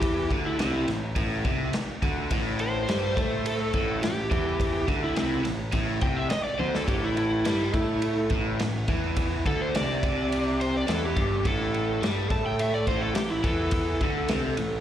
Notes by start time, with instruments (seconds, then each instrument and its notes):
Already playing: picked electric bass E2, overdriven electric guitar E3, electric slide guitar G4
0.02 kick, ride
0.31 picked electric bass D2, overdriven electric guitar D3, kick, ride
0.46 electric slide guitar E4
0.59 picked electric bass C2, overdriven electric guitar C3, electric slide guitar E4, snare, ride
0.88 picked electric bass A1, overdriven electric guitar A2, snare, ride
1.16 picked electric bass A1, overdriven electric guitar A2, kick, ride
1.45 picked electric bass C2, overdriven electric guitar C3, kick, ride
1.73 muted picked electric bass stroke, muted overdriven electric guitar stroke, snare, ride
2.02 picked electric bass D2, overdriven electric guitar D3, kick, ride
2.31 picked electric bass A1, overdriven electric guitar A2, kick, ride
2.59 electric slide guitar C5, ride
2.88 picked electric bass G2, overdriven electric guitar G3, snare, ride
3.16 picked electric bass A2, overdriven electric guitar A3, kick, ride
3.46 electric slide guitar A4, ride
3.73 picked electric bass A1, overdriven electric guitar A2, kick, ride
4.02 picked electric bass A1, overdriven electric guitar A2, electric slide guitar G4, snare, ride
4.31 picked electric bass E2, overdriven electric guitar E3, kick, ride
4.60 kick, ride
4.88 picked electric bass D2, overdriven electric guitar D3, kick, ride
5.04 electric slide guitar E4
5.16 picked electric bass C2, overdriven electric guitar C3, electric slide guitar E4, snare, ride
5.44 picked electric bass A1, overdriven electric guitar A2, snare, ride
5.72 picked electric bass A1, overdriven electric guitar A2, kick, ride
6.01 picked electric bass C2, overdriven electric guitar C3, electric slide guitar G5, kick, ride
6.16 electric slide guitar E5
6.30 electric slide guitar D#5, muted picked electric bass stroke, muted overdriven electric guitar stroke, snare, ride
6.44 electric slide guitar D5
6.59 picked electric bass D2, overdriven electric guitar D3, electric slide guitar C5, high tom
6.75 electric slide guitar A4, snare
6.87 picked electric bass A1, overdriven electric guitar A2, electric slide guitar G4, kick, ride
7.04 electric slide guitar E4
7.17 electric slide guitar E4, ride
7.45 picked electric bass G2, overdriven electric guitar G3, snare, ride
7.74 picked electric bass A2, overdriven electric guitar A3, kick, ride
8.02 ride
8.30 picked electric bass A1, overdriven electric guitar A2, kick, ride
8.59 picked electric bass A1, overdriven electric guitar A2, snare, ride
8.88 picked electric bass E2, overdriven electric guitar E3, kick, ride
9.16 kick, ride
9.46 picked electric bass D2, overdriven electric guitar D3, electric slide guitar A4, kick, ride
9.61 electric slide guitar C5
9.75 picked electric bass C2, overdriven electric guitar C3, electric slide guitar D5, snare, ride
10.03 picked electric bass C2, overdriven electric guitar C3, kick, ride
10.32 ride
10.61 electric slide guitar C5, ride
10.77 electric slide guitar D5
10.88 picked electric bass E2, overdriven electric guitar E3, electric slide guitar A4, snare, ride
11.06 electric slide guitar G4
11.16 picked electric bass G1, overdriven electric guitar G2, kick, ride
11.45 picked electric bass A1, overdriven electric guitar A2, electric slide guitar A4, kick, ride
11.74 ride
12.02 picked electric bass G2, overdriven electric guitar G3, snare, ride
12.30 picked electric bass A2, overdriven electric guitar A3, electric slide guitar A5, kick, ride
12.46 electric slide guitar G5
12.59 electric slide guitar E5, ride
12.74 electric slide guitar D5
12.87 picked electric bass A1, overdriven electric guitar A2, electric slide guitar C5, kick, ride
13.01 electric slide guitar A4
13.15 picked electric bass A1, overdriven electric guitar A2, electric slide guitar G4, snare, ride
13.29 electric slide guitar E4
13.44 picked electric bass E2, overdriven electric guitar E3, electric slide guitar A4, kick, ride
13.71 kick, ride
14.01 picked electric bass D2, overdriven electric guitar D3, kick, ride
14.28 picked electric bass C2, overdriven electric guitar C3, snare, ride
14.57 picked electric bass A1, overdriven electric guitar A2, ride